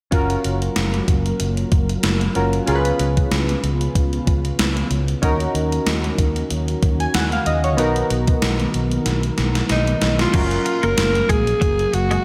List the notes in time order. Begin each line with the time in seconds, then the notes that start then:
0.11 F#1 F#3 A#3 C#4 F4 F#4 A#4, kick, closed hi-hat
0.30 closed hi-hat
0.44 F#1, closed hi-hat
0.62 closed hi-hat
0.76 F#1, snare, closed hi-hat
0.94 closed hi-hat
1.08 F#1, kick, closed hi-hat
1.26 closed hi-hat
1.40 F#1, closed hi-hat
1.57 closed hi-hat
1.72 F#1, kick, closed hi-hat
1.89 closed hi-hat
2.03 F#1, snare, closed hi-hat
2.21 closed hi-hat
2.35 F#1 C#4 F4 F#4 A#4, closed hi-hat
2.53 closed hi-hat
2.66 C#2 C#3 B3 C#4 F4 G#4 A#4, closed hi-hat
2.75 B4
2.85 closed hi-hat
2.99 C#2, closed hi-hat
3.17 kick, closed hi-hat
3.31 C#2, snare, closed hi-hat
3.49 closed hi-hat
3.63 C#2, closed hi-hat
3.81 closed hi-hat
3.95 C#2, kick, closed hi-hat
4.13 closed hi-hat
4.27 C#2, kick, closed hi-hat
4.45 closed hi-hat
4.59 C#2, snare, closed hi-hat
4.77 closed hi-hat
4.90 C#2, closed hi-hat
5.08 closed hi-hat
5.22 D#2 D#3 C#4 D#4 F#4 A#4, kick, closed hi-hat
5.40 closed hi-hat
5.54 D#2, closed hi-hat
5.72 closed hi-hat
5.86 D#2, snare, closed hi-hat
6.04 closed hi-hat
6.18 D#2, kick, closed hi-hat
6.36 closed hi-hat
6.50 D#2, closed hi-hat
6.68 closed hi-hat
6.83 D#2, kick, closed hi-hat
7.00 G#5, closed hi-hat
7.14 D#2 F#5, snare, closed hi-hat
7.32 F5, closed hi-hat
7.46 D#2 D#5, closed hi-hat
7.64 C#5, closed hi-hat
7.77 B1 B3 D#4 F#4 A#4, closed hi-hat
7.96 closed hi-hat
8.10 B1, closed hi-hat
8.27 kick, closed hi-hat
8.42 B1, snare, closed hi-hat
8.60 closed hi-hat
8.74 B1, closed hi-hat
8.91 closed hi-hat
9.06 B1, snare, closed hi-hat
9.23 closed hi-hat
9.38 B1, snare, closed hi-hat
9.55 snare, closed hi-hat
9.69 B1 D#4, snare, closed hi-hat
9.87 closed hi-hat
10.01 B1, snare, closed hi-hat
10.19 F4, snare, closed hi-hat
10.33 F#1 F#3 A#3 C#4 A#4 F5, kick, closed hi-hat, crash
10.51 closed hi-hat
10.65 muted clean electric guitar stroke, closed hi-hat
10.83 F#1 A#3 A#4, closed hi-hat
10.98 F#1, snare, closed hi-hat
11.15 closed hi-hat
11.29 A#1 G#3 G#4, kick, closed hi-hat
11.47 closed hi-hat
11.61 F#1 F#3, kick, closed hi-hat
11.79 closed hi-hat
11.93 F#1 F#4, muted clean electric guitar stroke, closed hi-hat
12.11 G#3, closed hi-hat